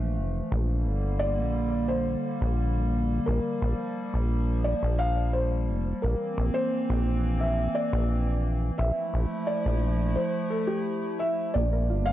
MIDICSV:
0, 0, Header, 1, 5, 480
1, 0, Start_track
1, 0, Tempo, 689655
1, 361, Time_signature, 4, 2, 24, 8
1, 8440, End_track
2, 0, Start_track
2, 0, Title_t, "Felt piano"
2, 0, Program_c, 0, 0
2, 0, Note_on_c, 0, 77, 96
2, 86, Note_off_c, 0, 77, 0
2, 830, Note_on_c, 0, 74, 112
2, 1310, Note_on_c, 0, 72, 93
2, 1330, Note_off_c, 0, 74, 0
2, 1767, Note_off_c, 0, 72, 0
2, 2270, Note_on_c, 0, 70, 94
2, 3207, Note_off_c, 0, 70, 0
2, 3231, Note_on_c, 0, 74, 103
2, 3458, Note_off_c, 0, 74, 0
2, 3471, Note_on_c, 0, 77, 109
2, 3698, Note_off_c, 0, 77, 0
2, 3711, Note_on_c, 0, 72, 98
2, 4191, Note_on_c, 0, 70, 92
2, 4210, Note_off_c, 0, 72, 0
2, 4530, Note_off_c, 0, 70, 0
2, 4551, Note_on_c, 0, 72, 110
2, 5151, Note_on_c, 0, 76, 97
2, 5174, Note_off_c, 0, 72, 0
2, 5391, Note_on_c, 0, 74, 105
2, 5403, Note_off_c, 0, 76, 0
2, 5848, Note_off_c, 0, 74, 0
2, 6110, Note_on_c, 0, 76, 96
2, 6590, Note_on_c, 0, 74, 98
2, 6610, Note_off_c, 0, 76, 0
2, 7069, Note_on_c, 0, 72, 90
2, 7090, Note_off_c, 0, 74, 0
2, 7298, Note_off_c, 0, 72, 0
2, 7309, Note_on_c, 0, 69, 92
2, 7428, Note_on_c, 0, 67, 88
2, 7439, Note_off_c, 0, 69, 0
2, 7790, Note_on_c, 0, 76, 104
2, 7805, Note_off_c, 0, 67, 0
2, 8031, Note_on_c, 0, 74, 105
2, 8042, Note_off_c, 0, 76, 0
2, 8391, Note_on_c, 0, 77, 118
2, 8406, Note_off_c, 0, 74, 0
2, 8440, Note_off_c, 0, 77, 0
2, 8440, End_track
3, 0, Start_track
3, 0, Title_t, "Synth arpeggio sound"
3, 0, Program_c, 1, 84
3, 8042, Note_on_c, 1, 58, 86
3, 8133, Note_off_c, 1, 58, 0
3, 8162, Note_on_c, 1, 70, 77
3, 8253, Note_off_c, 1, 70, 0
3, 8282, Note_on_c, 1, 65, 78
3, 8374, Note_off_c, 1, 65, 0
3, 8440, End_track
4, 0, Start_track
4, 0, Title_t, "Ambient pad"
4, 0, Program_c, 2, 92
4, 0, Note_on_c, 2, 52, 81
4, 0, Note_on_c, 2, 53, 78
4, 0, Note_on_c, 2, 57, 95
4, 332, Note_off_c, 2, 52, 0
4, 341, Note_off_c, 2, 57, 0
4, 342, Note_off_c, 2, 53, 0
4, 361, Note_on_c, 2, 55, 77
4, 361, Note_on_c, 2, 58, 96
4, 362, Note_on_c, 2, 50, 84
4, 2262, Note_off_c, 2, 50, 0
4, 2281, Note_on_c, 2, 53, 85
4, 4173, Note_off_c, 2, 55, 0
4, 4173, Note_off_c, 2, 58, 0
4, 4181, Note_off_c, 2, 53, 0
4, 4200, Note_on_c, 2, 58, 75
4, 4200, Note_on_c, 2, 60, 95
4, 4201, Note_on_c, 2, 52, 85
4, 6101, Note_off_c, 2, 58, 0
4, 6101, Note_off_c, 2, 60, 0
4, 6102, Note_off_c, 2, 52, 0
4, 6120, Note_on_c, 2, 64, 94
4, 6121, Note_on_c, 2, 53, 85
4, 6121, Note_on_c, 2, 57, 79
4, 8021, Note_off_c, 2, 53, 0
4, 8021, Note_off_c, 2, 57, 0
4, 8021, Note_off_c, 2, 64, 0
4, 8040, Note_on_c, 2, 58, 78
4, 8041, Note_on_c, 2, 55, 85
4, 8041, Note_on_c, 2, 62, 96
4, 8440, Note_off_c, 2, 55, 0
4, 8440, Note_off_c, 2, 58, 0
4, 8440, Note_off_c, 2, 62, 0
4, 8440, End_track
5, 0, Start_track
5, 0, Title_t, "Acid bass"
5, 0, Program_c, 3, 38
5, 0, Note_on_c, 3, 34, 84
5, 120, Note_on_c, 3, 29, 99
5, 130, Note_off_c, 3, 34, 0
5, 292, Note_off_c, 3, 29, 0
5, 361, Note_on_c, 3, 34, 103
5, 600, Note_on_c, 3, 31, 98
5, 611, Note_off_c, 3, 34, 0
5, 960, Note_on_c, 3, 34, 92
5, 971, Note_off_c, 3, 31, 0
5, 1506, Note_off_c, 3, 34, 0
5, 1681, Note_on_c, 3, 34, 97
5, 2226, Note_off_c, 3, 34, 0
5, 2281, Note_on_c, 3, 34, 103
5, 2367, Note_off_c, 3, 34, 0
5, 2520, Note_on_c, 3, 34, 96
5, 2606, Note_off_c, 3, 34, 0
5, 2881, Note_on_c, 3, 34, 91
5, 3306, Note_off_c, 3, 34, 0
5, 3360, Note_on_c, 3, 34, 84
5, 3961, Note_on_c, 3, 29, 102
5, 3971, Note_off_c, 3, 34, 0
5, 4132, Note_off_c, 3, 29, 0
5, 4200, Note_on_c, 3, 34, 104
5, 4286, Note_off_c, 3, 34, 0
5, 4440, Note_on_c, 3, 34, 99
5, 4526, Note_off_c, 3, 34, 0
5, 4800, Note_on_c, 3, 34, 92
5, 5346, Note_off_c, 3, 34, 0
5, 5519, Note_on_c, 3, 34, 98
5, 6065, Note_off_c, 3, 34, 0
5, 6119, Note_on_c, 3, 34, 106
5, 6206, Note_off_c, 3, 34, 0
5, 6359, Note_on_c, 3, 34, 99
5, 6446, Note_off_c, 3, 34, 0
5, 6720, Note_on_c, 3, 34, 93
5, 7080, Note_off_c, 3, 34, 0
5, 8042, Note_on_c, 3, 34, 103
5, 8281, Note_on_c, 3, 31, 99
5, 8291, Note_off_c, 3, 34, 0
5, 8440, Note_off_c, 3, 31, 0
5, 8440, End_track
0, 0, End_of_file